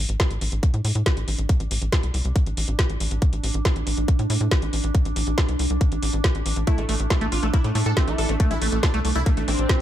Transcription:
Already playing: ambient pad D4
0.09 analog synth bass A1, closed hi-hat
0.20 kick, snare, closed hi-hat
0.31 analog synth bass A1, closed hi-hat
0.41 analog synth bass A1, open hi-hat
0.52 analog synth bass A1, closed hi-hat
0.63 kick, closed hi-hat
0.74 analog synth bass A2, closed hi-hat
0.85 analog synth bass A2, open hi-hat
0.95 analog synth bass A2, closed hi-hat
1.06 kick, snare, closed hi-hat
1.17 analog synth bass A1, closed hi-hat
1.28 analog synth bass A1, open hi-hat
1.39 analog synth bass A1, closed hi-hat
1.49 kick, closed hi-hat
1.60 analog synth bass A1, closed hi-hat
1.71 analog synth bass A1, open hi-hat
1.82 analog synth bass A1, closed hi-hat
1.92 kick, snare, closed hi-hat
2.03 analog synth bass C2, closed hi-hat
2.14 analog synth bass C2, open hi-hat
2.25 analog synth bass C2, closed hi-hat
2.36 kick, closed hi-hat
2.46 analog synth bass A1, closed hi-hat
2.57 analog synth bass A1, open hi-hat
2.68 analog synth bass A1, closed hi-hat
2.79 kick, snare, closed hi-hat
2.90 analog synth bass A1, closed hi-hat
3.00 analog synth bass A1, open hi-hat
3.11 analog synth bass A1, closed hi-hat
3.22 kick, closed hi-hat
3.33 analog synth bass A1, closed hi-hat
3.44 analog synth bass A1, open hi-hat
3.54 analog synth bass A1, closed hi-hat
3.65 kick, snare, closed hi-hat
3.76 analog synth bass A1, closed hi-hat
3.87 analog synth bass A1, open hi-hat
3.98 analog synth bass A1, closed hi-hat
4.08 kick, closed hi-hat
4.19 analog synth bass A2, closed hi-hat
4.30 analog synth bass A2, open hi-hat
4.41 analog synth bass A2, closed hi-hat
4.51 kick, snare, closed hi-hat
4.62 analog synth bass A1, closed hi-hat
4.73 analog synth bass A1, open hi-hat
4.84 analog synth bass A1, closed hi-hat
4.95 kick, closed hi-hat
5.05 analog synth bass A1, closed hi-hat
5.16 analog synth bass A1, open hi-hat
5.27 analog synth bass A1, closed hi-hat
5.38 kick, snare, closed hi-hat
5.49 analog synth bass C2, closed hi-hat
5.59 analog synth bass C2, open hi-hat
5.70 analog synth bass C2, closed hi-hat
5.81 kick, closed hi-hat
5.92 analog synth bass A1, closed hi-hat
6.03 analog synth bass A1, open hi-hat
6.13 analog synth bass A1, closed hi-hat
6.24 kick, snare, closed hi-hat
6.35 analog synth bass A1, closed hi-hat
6.46 analog synth bass A1, open hi-hat
6.56 analog synth bass A1, closed hi-hat
6.67 acid bass A3, supersaw synth E4, kick, closed hi-hat
6.78 analog synth bass A1, acid bass G3, supersaw synth A3, closed hi-hat
6.89 analog synth bass A1, supersaw synth A3, acid bass A3, open hi-hat
7.00 analog synth bass A1, closed hi-hat
7.10 supersaw synth A3, acid bass A3, kick, snare, closed hi-hat
7.21 analog synth bass A1, supersaw synth A3, acid bass A3, closed hi-hat
7.32 analog synth bass A1, supersaw synth F4, open hi-hat
7.43 analog synth bass A1, acid bass A3, supersaw synth A3, closed hi-hat
7.54 acid bass A#3, supersaw synth E4, kick, closed hi-hat
7.64 analog synth bass A2, supersaw synth A3, closed hi-hat
7.75 analog synth bass A2, acid bass A3, supersaw synth A3, open hi-hat
7.86 analog synth bass A2, supersaw synth A4, closed hi-hat
7.97 supersaw synth A3, acid bass C4, kick, snare, closed hi-hat
8.08 analog synth bass A1, supersaw synth A3, acid bass E4, closed hi-hat
8.18 analog synth bass A1, supersaw synth A4, open hi-hat
8.29 analog synth bass A1, acid bass G3, supersaw synth A3, closed hi-hat
8.40 acid bass A3, supersaw synth A3, kick, closed hi-hat
8.51 analog synth bass A1, acid bass G3, supersaw synth E4, closed hi-hat
8.61 analog synth bass A1, acid bass A3, supersaw synth A3, open hi-hat
8.72 analog synth bass A1, supersaw synth A3, closed hi-hat
8.83 acid bass A3, supersaw synth D4, kick, snare, closed hi-hat
8.94 analog synth bass C2, acid bass A3, supersaw synth A3, closed hi-hat
9.05 analog synth bass C2, supersaw synth A3, open hi-hat
9.15 analog synth bass C2, acid bass A3, supersaw synth E4, closed hi-hat
9.26 supersaw synth A3, acid bass A#3, kick, closed hi-hat
9.37 analog synth bass A1, supersaw synth A3, closed hi-hat
9.48 analog synth bass A1, acid bass A3, supersaw synth C4, open hi-hat
9.59 analog synth bass A1, closed hi-hat
9.69 acid bass C4, kick, snare, closed hi-hat

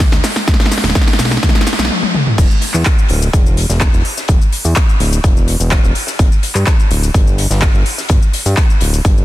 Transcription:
0.00 kick, snare, closed hi-hat, open hi-hat, cabasa
0.12 analog synth bass D2, snare, closed hi-hat, cabasa
0.23 snare, closed hi-hat, open hi-hat, cabasa
0.36 snare, cabasa
0.48 analog synth bass D2, kick, snare, closed hi-hat, cabasa
0.54 snare
0.60 snare, closed hi-hat, cabasa
0.66 snare
0.71 snare, open hi-hat, cabasa
0.78 snare
0.84 analog synth bass D1, snare, closed hi-hat, cabasa
0.90 snare
0.95 kick, snare, closed hi-hat, cabasa
1.01 snare
1.08 snare, open hi-hat, cabasa
1.13 snare
1.19 analog synth bass B1, snare, closed hi-hat, open hi-hat, cabasa
1.25 snare
1.31 snare, cabasa
1.37 snare
1.43 analog synth bass D2, kick, snare, closed hi-hat, cabasa
1.49 snare
1.55 snare, cabasa
1.61 snare
1.67 snare, closed hi-hat, open hi-hat, cabasa
1.73 snare
1.79 analog synth bass B1, snare, cabasa
1.85 snare
1.91 high tom
2.03 high tom
2.14 mid tom
2.27 mid tom
2.38 analog synth bass E1, kick, closed hi-hat, crash, cabasa
2.51 cabasa
2.61 closed hi-hat, open hi-hat
2.74 analog synth bass E2, clap, cabasa
2.85 kick, snare, clap, closed hi-hat, cabasa
2.98 cabasa
3.09 analog synth bass D1, closed hi-hat, open hi-hat
3.22 cabasa
3.33 analog synth bass E1, kick, closed hi-hat, cabasa
3.46 cabasa
3.57 closed hi-hat, open hi-hat
3.70 analog synth bass E1, snare, cabasa
3.80 kick, snare, clap, open hi-hat, cabasa
3.93 analog synth bass E1, cabasa
4.05 closed hi-hat, open hi-hat
4.18 snare, cabasa
4.28 analog synth bass E1, kick, closed hi-hat, cabasa
4.41 cabasa
4.52 closed hi-hat, open hi-hat
4.64 analog synth bass E2, closed hi-hat, cabasa
4.76 kick, snare, clap, closed hi-hat, cabasa
4.89 cabasa
5.00 analog synth bass D1, closed hi-hat, open hi-hat
5.13 cabasa
5.24 analog synth bass E1, kick, closed hi-hat, cabasa
5.37 cabasa
5.48 closed hi-hat, open hi-hat
5.60 analog synth bass E1, cabasa
5.71 kick, snare, clap, closed hi-hat, cabasa
5.84 analog synth bass E1, cabasa
5.95 closed hi-hat, open hi-hat
6.07 snare, cabasa
6.19 analog synth bass G1, kick, closed hi-hat, cabasa
6.32 cabasa
6.43 closed hi-hat, open hi-hat
6.55 analog synth bass G2, clap, cabasa
6.67 kick, snare, clap, closed hi-hat, cabasa
6.80 cabasa
6.90 analog synth bass D1, closed hi-hat, open hi-hat
7.03 cabasa
7.14 analog synth bass G1, kick, closed hi-hat, cabasa
7.27 cabasa
7.38 closed hi-hat, open hi-hat
7.50 analog synth bass G1, snare, cabasa
7.62 kick, snare, clap, open hi-hat, cabasa
7.74 analog synth bass G1, cabasa
7.86 closed hi-hat, open hi-hat
7.98 snare, cabasa
8.09 analog synth bass G1, kick, closed hi-hat, cabasa
8.22 cabasa
8.33 closed hi-hat, open hi-hat
8.46 analog synth bass G2, closed hi-hat, cabasa
8.57 kick, snare, clap, closed hi-hat, cabasa
8.70 cabasa
8.80 analog synth bass D1, closed hi-hat, open hi-hat
8.94 cabasa
9.05 analog synth bass G1, kick, closed hi-hat, cabasa
9.18 cabasa

